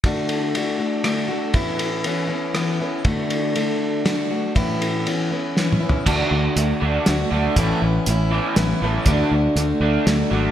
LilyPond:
<<
  \new Staff \with { instrumentName = "Steel-string acoustic guitar" } { \time 3/4 \key d \major \tempo 4 = 120 <d a d' fis'>4 <d a d' fis'>8 <a d' fis'>8 <d a d' fis'>8 <a d' fis'>8 | <a, e b cis' e'>4 <e b cis' e'>8 <b cis' e'>8 <e b cis' e'>8 <b cis' e'>8 | <d a d' fis'>4 <d a d' fis'>4 <d a d' fis'>8 <a d' fis'>8 | <a, e b cis' e'>4 <e b cis' e'>8 <b cis' e'>8 <e b cis' e'>8 <b cis' e'>8 |
<d a d' fis'>4 <d a d' fis'>4 <d a d' fis'>8 <a d' fis'>8 | <a, e b cis' e'>4 <e b cis' e'>8 <b cis' e'>8 <e b cis' e'>8 <b cis' e'>8 | <d a d' fis'>4 <d a d' fis'>4 <d a d' fis'>8 <a d' fis'>8 | }
  \new Staff \with { instrumentName = "Overdriven electric guitar" } { \clef bass \time 3/4 \key d \major r2. | r2. | r2. | r2. |
<d a d'>8 <d a>8 <d a>8 <d a d'>8 <d a>8 <d a d'>8 | <a, e a>8 <a, e>8 <a, e>8 <a, e a>8 <a, e>8 <a, e a>8 | <d a d'>8 <d a>8 <d a>8 <d a d'>8 <d a>8 <d a d'>8 | }
  \new Staff \with { instrumentName = "Fingered electric bass" } { \clef bass \time 3/4 \key d \major r2. | r2. | r2. | r2. |
d,8 d,8 d,8 d,8 d,8 d,8 | a,,8 a,,8 a,,4 a,,8 a,,8 | d,8 d,8 d,8 d,8 d,8 gis,,8 | }
  \new DrumStaff \with { instrumentName = "Drums" } \drummode { \time 3/4 <bd cymr>8 cymr8 cymr4 <cymr ss>4 | <bd cymr>8 cymr8 cymr4 <cymr ss>4 | <bd cymr>8 cymr8 cymr4 <cymr sn>4 | <bd cymr>8 cymr8 cymr4 \tuplet 3/2 { sn8 toml8 tomfh8 } |
<cymc bd>4 hh4 <hh sn>4 | <hh bd>4 hh4 <hh sn>4 | <hh bd>4 hh4 <hh sn>4 | }
>>